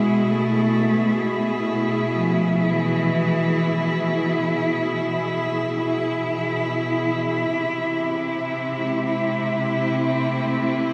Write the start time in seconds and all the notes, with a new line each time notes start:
Already playing: B2 G#3 E4 G#4
0.31 A3
2.13 F3
2.71 E3
7.51 C3
7.99 C4
8.77 G#3
9.95 A3